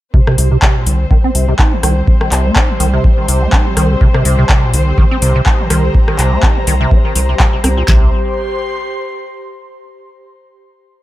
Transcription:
0.14 0.21 C3 loud
0.14 7.84 G3 medium
0.14 7.84 C4 medium
0.14 7.87 G4 medium
0.14 7.84 C5 medium
0.14 kick loud
0.27 0.36 C3 loud
0.27 cross-stick medium
0.38 0.57 C2 loud
0.38 0.49 C3 medium
0.38 open hi-hat loud
0.51 0.57 C3 loud
0.51 7.88 C5 medium
0.62 0.77 C3 medium
0.62 kick loud
0.62 clap loud
0.76 0.88 A#2 medium
0.86 1.06 C2 loud
0.86 1.01 D#3 loud
0.86 open hi-hat loud
1.00 1.09 D3 medium
1.00 5.06 C6 medium
1.11 1.18 D#3 loud
1.11 kick loud
1.24 1.30 C4 loud
1.35 1.54 C2 medium
1.35 1.46 C3 medium
1.35 open hi-hat loud
1.48 1.54 C3 loud
1.59 1.74 D#4 medium
1.59 kick loud
1.59 clap loud
1.73 1.81 D#3 medium
1.83 2.02 C2 loud
1.83 1.98 D#3 loud
1.83 cross-stick medium
1.83 open hi-hat loud
1.97 2.09 D3 medium
2.07 2.15 F3 medium
2.07 kick loud
2.21 2.30 D#3 medium
2.21 cross-stick medium
2.32 2.51 C2 loud
2.32 2.47 C3 medium
2.32 clap medium
2.32 open hi-hat loud
2.45 2.57 A#3 medium
2.56 2.71 D#4 loud
2.56 kick loud
2.56 clap loud
2.69 2.78 D#3 medium
2.80 2.99 C2 loud
2.80 2.87 D#3 loud
2.80 open hi-hat loud
2.94 3.06 C3 loud
3.04 3.12 G3 medium
3.04 kick loud
3.18 3.27 D#3 medium
3.28 3.48 C2 loud
3.28 3.43 C3 medium
3.28 open hi-hat loud
3.42 3.54 A#3 medium
3.53 3.68 D#4 loud
3.53 kick loud
3.53 clap loud
3.66 3.75 D#3 medium
3.77 3.96 C2 medium
3.77 3.92 D#3 loud
3.77 cross-stick medium
3.77 open hi-hat loud
3.90 3.96 C3 loud
4.01 4.08 C3 loud
4.01 kick loud
4.14 4.23 C3 loud
4.14 cross-stick medium
4.25 4.44 C2 loud
4.25 4.36 C3 medium
4.25 open hi-hat loud
4.39 4.45 C3 loud
4.49 4.64 C3 medium
4.49 kick loud
4.49 clap loud
4.63 4.75 A#2 medium
4.74 4.93 C2 loud
4.74 4.89 D#3 loud
4.74 open hi-hat loud
4.87 4.96 D3 medium
4.92 7.88 A#5 medium
4.98 5.05 D#3 loud
4.98 kick loud
5.11 5.17 C4 loud
5.22 5.41 C2 medium
5.22 5.33 C3 medium
5.22 open hi-hat loud
5.36 5.41 C3 loud
5.46 5.61 D#4 medium
5.46 kick loud
5.46 clap loud
5.60 5.69 D#3 medium
5.70 5.90 C2 loud
5.70 5.85 D#3 loud
5.70 cross-stick medium
5.70 open hi-hat loud
5.84 5.96 D3 medium
5.95 6.02 F3 medium
5.95 kick loud
6.08 6.17 D#3 medium
6.08 cross-stick medium
6.19 6.38 C2 medium
6.19 6.34 C3 medium
6.19 clap medium
6.19 open hi-hat loud
6.32 6.44 A#3 medium
6.43 6.58 D#4 loud
6.43 kick loud
6.43 clap loud
6.56 6.65 D#3 medium
6.67 6.86 C2 loud
6.67 6.75 D#3 loud
6.67 open hi-hat loud
6.81 6.93 C3 loud
6.91 6.99 G3 medium
6.91 kick loud
7.05 7.14 D#3 medium
7.15 7.35 C2 loud
7.15 7.20 D#3 medium
7.15 open hi-hat loud
7.29 7.35 C3 medium
7.40 7.47 C3 medium
7.40 kick loud
7.40 clap loud
7.53 7.59 C3 medium
7.64 7.83 C2 loud
7.64 7.68 C4 medium
7.64 cross-stick medium
7.64 open hi-hat loud
7.77 7.83 A#2 medium
7.88 8.11 C2 loud
7.88 8.11 C3 medium
7.88 8.11 G3 medium
7.88 8.11 C4 medium
7.88 9.78 G4 medium
7.88 8.11 C5 medium
7.88 kick loud
7.88 snare loud
7.88 clap medium
7.96 9.78 C5 medium
8.04 9.78 C6 medium

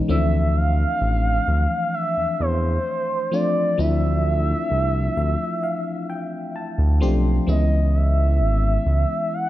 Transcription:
0.00 0.11 E3 medium
0.00 0.10 G#3 medium
0.00 0.11 B3 medium
0.00 0.11 C#4 medium
0.00 0.10 D#4 medium
0.08 0.85 D2 loud
0.08 1.80 E3 medium
0.08 1.79 F3 medium
0.08 1.79 A3 medium
0.08 1.80 C4 medium
0.08 1.80 D4 medium
0.08 0.58 E5 loud
0.56 1.96 F5 loud
1.01 1.39 A1 medium
1.48 1.67 D2 medium
1.94 2.42 E5 loud
2.17 2.26 E2 soft
2.40 2.78 E2 loud
2.40 3.35 C5 medium
3.31 3.74 F3 medium
3.31 3.75 A3 medium
3.31 3.75 C4 medium
3.31 3.75 D4 medium
3.31 3.76 F4 medium
3.31 3.81 D5 medium
3.78 4.54 D2 loud
3.78 5.48 F3 medium
3.78 5.49 A3 medium
3.78 5.49 C4 medium
3.78 5.49 D4 medium
3.78 5.50 E4 medium
3.78 7.02 E5 loud
4.71 5.08 C2 loud
5.17 5.36 D2 medium
5.17 5.60 E5 medium
5.63 6.06 F5 medium
6.10 6.52 G5 medium
6.56 6.98 A5 medium
6.78 7.03 D2 medium
7.00 7.39 B1 medium
7.00 7.44 F3 medium
7.00 7.44 A3 medium
7.00 7.44 C4 medium
7.00 7.44 D4 medium
7.00 7.45 G4 medium
7.00 7.45 C6 medium
7.47 8.42 C#2 loud
7.47 9.17 E3 medium
7.47 9.18 G#3 medium
7.47 9.18 B3 medium
7.47 9.18 C#4 medium
7.47 9.19 E4 medium
7.47 7.96 D#5 loud
7.95 9.35 E5 loud
8.40 8.78 G#1 loud
8.86 9.05 C#2 medium
9.33 9.49 F#5 loud

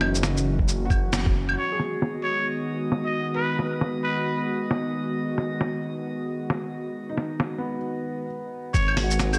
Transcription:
0.00 1.56 F#1 medium
0.00 1.54 E3 medium
0.00 1.54 F#3 medium
0.00 1.54 C#4 medium
0.00 1.60 C#4 medium
0.00 1.60 D#4 medium
0.00 1.54 F#4 medium
0.00 snare medium
0.00 claves medium
0.15 shaker medium
0.23 snare medium
0.23 shaker medium
0.37 shaker medium
0.59 kick medium
0.68 shaker medium
0.85 1.53 F#4 medium
0.90 kick loud
0.90 claves soft
0.90 shaker soft
1.13 snare loud
1.13 shaker medium
1.26 kick loud
1.49 claves medium
1.57 8.25 D#3 medium
1.57 8.25 G#3 medium
1.57 8.25 B3 medium
1.57 8.25 F#4 medium
1.57 1.81 C#5 medium
1.57 8.29 D#5 medium
1.57 crash medium
1.72 2.39 G#4 medium
1.80 snare medium
2.02 snare medium
2.24 2.48 C#5 medium
2.92 snare medium
3.05 3.29 D#5 medium
3.35 3.63 B4 medium
3.35 3.60 B4 medium
3.59 snare medium
3.65 4.34 B4 soft
3.81 snare medium
4.04 4.40 B4 medium
4.71 snare loud
5.38 snare medium
5.61 snare medium
6.50 snare loud
7.09 7.76 D#4 medium
7.17 snare medium
7.40 snare medium
7.58 8.25 B3 medium
8.74 9.39 G#1 medium
8.74 9.39 D#3 medium
8.74 9.39 G#3 medium
8.74 9.39 B3 medium
8.74 9.39 F#4 medium
8.74 8.98 C#5 medium
8.74 kick loud
8.74 shaker medium
8.88 claves medium
8.97 snare medium
8.97 open hi-hat medium
9.03 9.39 F#4 medium
9.11 shaker medium
9.20 snare loud
9.20 shaker medium
9.33 9.39 G#4 medium
9.33 claves medium
9.33 shaker medium

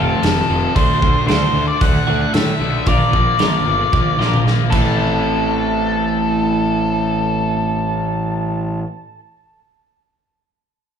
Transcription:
0.00 0.13 F1 medium
0.00 0.21 F2 medium
0.00 0.22 C3 medium
0.00 0.22 F3 medium
0.00 0.22 A3 medium
0.00 0.75 A3 medium
0.00 0.22 C4 medium
0.00 0.23 F4 medium
0.00 0.78 A4 medium
0.22 0.40 F1 medium
0.22 0.47 F2 medium
0.22 0.48 C3 loud
0.22 0.48 F3 loud
0.22 muted clean electric guitar stroke soft
0.22 snare loud
0.22 open hi-hat medium
0.48 0.66 F1 medium
0.48 0.73 F2 medium
0.48 0.74 C3 medium
0.48 0.74 F3 medium
0.48 muted clean electric guitar stroke soft
0.75 0.92 D2 medium
0.75 1.01 D3 medium
0.75 1.02 D3 medium
0.75 1.01 A3 medium
0.75 1.02 A3 medium
0.75 1.02 D4 medium
0.75 1.03 F#4 loud
0.75 1.26 C5 medium
0.75 kick loud
0.75 open hi-hat soft
1.02 1.18 D2 medium
1.02 1.26 D3 medium
1.02 1.26 A3 medium
1.02 1.28 D4 medium
1.02 muted clean electric guitar stroke soft
1.02 kick medium
1.26 1.44 D2 medium
1.26 1.52 D3 medium
1.26 1.54 D3 medium
1.26 1.53 A3 medium
1.26 1.55 A3 medium
1.26 1.55 D4 loud
1.26 1.55 D4 medium
1.26 1.55 F#4 medium
1.26 1.67 C5 medium
1.26 snare loud
1.26 open hi-hat soft
1.53 1.70 D2 medium
1.53 1.80 D3 medium
1.53 1.80 A3 medium
1.53 1.81 D4 medium
1.53 muted clean electric guitar stroke soft
1.68 1.80 D5 medium
1.81 1.98 D2 medium
1.81 2.07 D3 medium
1.81 2.07 A3 medium
1.81 2.08 D4 medium
1.81 2.20 F#5 medium
1.81 muted clean electric guitar stroke soft
1.81 kick loud
1.81 open hi-hat medium
2.07 2.25 D2 medium
2.07 2.32 D3 medium
2.07 2.33 D3 medium
2.07 2.33 A3 medium
2.07 2.33 D4 medium
2.07 2.34 D4 medium
2.07 2.33 F#4 medium
2.21 2.33 F#5 medium
2.33 2.51 A2 medium
2.33 2.59 D3 medium
2.33 2.60 A3 loud
2.33 2.61 D4 medium
2.33 2.86 E5 loud
2.33 muted clean electric guitar stroke soft
2.33 snare loud
2.33 open hi-hat soft
2.60 2.77 B1 medium
2.60 2.85 D3 medium
2.60 2.86 A3 medium
2.60 2.86 D4 medium
2.60 muted clean electric guitar stroke medium
2.86 3.03 A#1 medium
2.86 3.10 A#2 medium
2.86 3.13 D3 medium
2.86 3.11 F3 medium
2.86 3.11 A#3 medium
2.86 3.13 A#3 medium
2.86 3.13 D4 medium
2.86 3.13 F4 medium
2.86 4.42 D5 medium
2.86 kick medium
2.86 open hi-hat soft
3.11 3.30 A#1 medium
3.11 3.38 A#2 medium
3.11 3.38 F3 medium
3.11 3.38 A#3 medium
3.11 muted clean electric guitar stroke medium
3.11 kick medium
3.39 3.57 A#1 medium
3.39 3.64 A#2 medium
3.39 3.66 D3 medium
3.39 3.65 F3 medium
3.39 3.66 A#3 medium
3.39 3.65 D4 medium
3.39 3.66 F4 loud
3.39 snare loud
3.39 open hi-hat soft
3.66 3.82 G1 medium
3.66 3.91 A#2 medium
3.66 3.92 F3 medium
3.66 3.92 A#3 medium
3.66 muted clean electric guitar stroke soft
3.92 4.09 A#1 medium
3.92 4.18 A#2 medium
3.92 4.19 F3 medium
3.92 4.19 A#3 medium
3.92 muted clean electric guitar stroke soft
3.92 kick loud
4.18 4.35 A#1 medium
4.18 4.44 A#2 medium
4.18 4.46 D3 medium
4.18 4.45 F3 medium
4.18 4.46 A#3 medium
4.18 4.45 A#3 medium
4.18 4.46 D4 medium
4.18 4.45 F4 medium
4.18 snare medium
4.34 mid tom medium
4.45 4.62 A#1 medium
4.45 4.70 A#2 medium
4.45 4.72 F3 medium
4.45 4.72 A#3 loud
4.45 muted clean electric guitar stroke soft
4.45 snare medium
4.70 8.81 A1 medium
4.70 8.83 A2 medium
4.70 8.84 A2 medium
4.70 8.84 E3 medium
4.70 8.86 E3 medium
4.70 8.84 A3 medium
4.70 8.86 C4 medium
4.70 8.87 E4 medium
4.70 8.79 A4 medium
4.70 kick loud
4.70 crash medium
4.75 8.87 A3 medium

